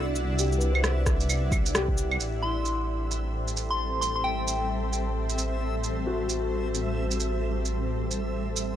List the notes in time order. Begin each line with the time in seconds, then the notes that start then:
Already playing: C2 D4 E4 F#4 D5 E5 F#5
0.16 cabasa
0.38 G4, shaker
0.52 cabasa
0.57 B4, cabasa
0.71 C5, claves
0.84 cross-stick, shaker
1.06 kick, cross-stick, cabasa
1.20 shaker
1.29 claves, shaker
1.52 kick, cabasa, claves
1.66 shaker
1.75 G4, cross-stick, cabasa, shaker
1.88 kick
1.98 cabasa
2.11 claves
2.19 A1 G3 C4 A4 C5 E5, shaker
2.42 E4 C6
2.65 shaker
3.11 shaker
3.48 shaker
3.57 shaker
3.70 C6
4.01 C6, shaker
4.16 C6
4.24 G5
4.48 shaker
4.93 shaker
5.29 shaker
5.38 shaker
5.84 shaker
6.06 F#4
6.29 shaker
6.75 shaker
7.11 shaker
7.20 shaker
7.65 shaker
8.11 shaker
8.56 shaker